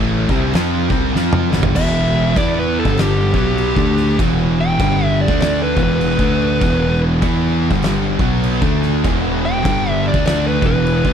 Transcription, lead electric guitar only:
1.76 E5
2.38 D5
2.59 B4
2.80 A4
3.00 G4
4.61 G5
5.06 E5
5.21 D5
5.41 D5
5.63 B4
5.83 B4
9.45 G5
9.90 E5
10.08 D5
10.26 D5
10.47 B4
10.67 B4

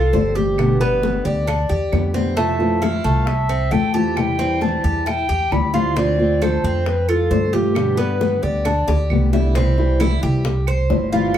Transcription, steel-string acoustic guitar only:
0.13 F3 G3 C4 G4
0.35 G3 C4 G4
0.58 B2 D3 G3 B3 G4
0.80 D3 G3 B3 G4
1.02 D3 G3 B3 G4
1.46 muted steel-string acoustic guitar stroke
1.91 D3 G3 B3 G4
2.14 D3 G3 B3 G4
2.36 C3 E3 A3 C4 F4
2.59 E3 A3 C4 F4
2.82 A3 C4
3.26 muted steel-string acoustic guitar stroke
3.72 E3 A3 C4 F4
3.94 E3 A3 C4 F4
4.17 C3 E3 G3 C4 E4
4.39 E3 G3 C4 E4
4.62 E3 G3 C4 E4
5.08 muted steel-string acoustic guitar stroke
5.51 E3 G3 C4 E4
5.73 E3 G3 C4 E4
5.96 D3 A3 C4 F4
6.19 A3 C4 F4
6.41 D3 A3 C4 F4
6.85 muted steel-string acoustic guitar stroke
7.31 D3 A3 C4 F4
7.53 A3 C4 F4
7.74 B2 D3 G3 B3 G4
7.97 D3 G3 B3 G4
8.20 D3 G3 B3 G4
8.66 muted steel-string acoustic guitar stroke
9.10 D3 G3 B3 G4
9.33 D3 G3 B3 G4
9.56 C3 E3 G3 C4 E4
9.79 E3 G3 C4 E4
10.01 E3 G3 C4 E4
10.45 muted steel-string acoustic guitar stroke
10.89 E3 G3 C4 E4
11.12 E3 G3 C4 E4

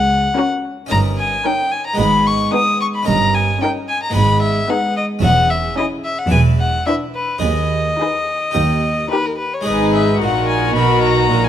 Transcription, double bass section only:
Already playing: C#2
0.91 G1
1.99 G#1
3.07 G1
4.15 G#1
5.23 E1
6.32 E1
7.43 D#2
8.55 D#2
9.67 G#1
10.21 A#1
10.76 B1
11.31 A#1

